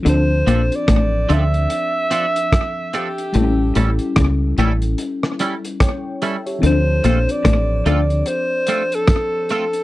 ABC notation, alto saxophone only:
X:1
M:4/4
L:1/16
Q:"Swing 16ths" 1/4=73
K:Dm
V:1 name="Alto saxophone"
c3 d3 e8 G2- | G4 z12 | c3 d3 d2 c3 A3 A2 |]